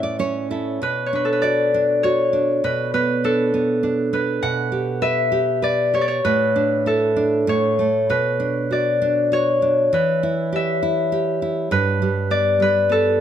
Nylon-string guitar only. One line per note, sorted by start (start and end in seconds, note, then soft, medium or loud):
0.00 0.78 A2 medium
0.00 0.18 C#4 soft
0.00 0.50 E4 medium
0.00 0.18 D5 medium
0.19 0.80 C#4 medium
0.19 0.49 C#5 medium
0.51 0.81 E4 soft
0.51 0.80 A4 medium
0.82 2.60 B2 medium
1.13 1.73 D4 medium
1.43 2.03 F#4 soft
1.74 2.32 D4 medium
2.04 2.63 F#4 medium
2.33 2.63 D4 soft
2.64 4.39 B2 medium
2.94 3.53 B3 soft
3.24 3.82 D4 medium
3.54 4.12 B3 medium
3.83 4.41 D4 medium
4.13 4.42 B3 medium
4.43 6.20 B2 medium
4.72 5.31 G4 medium
5.02 5.61 B4 medium
5.32 5.92 G4 medium
5.62 6.22 B4 medium
5.94 6.23 G4 soft
6.25 7.44 A2 medium
6.56 7.15 D4 medium
6.86 7.46 E4 soft
7.16 7.47 D4 medium
7.47 8.07 A2 medium
7.79 8.09 A3 soft
8.10 9.89 B2 medium
8.40 9.00 D4 medium
8.71 9.31 F#4 soft
9.02 9.61 D4 medium
9.32 9.91 F#4 medium
9.62 9.92 D4 soft
9.93 11.68 E3 medium
10.23 10.81 E4 medium
10.52 11.11 G4 medium
10.83 11.41 E4 medium
11.12 11.70 G4 medium
11.42 11.71 E4 soft
11.71 13.21 G2 medium
12.02 12.59 G3 medium
12.31 12.88 B3 medium
12.60 13.19 G3 medium
12.89 13.21 B3 medium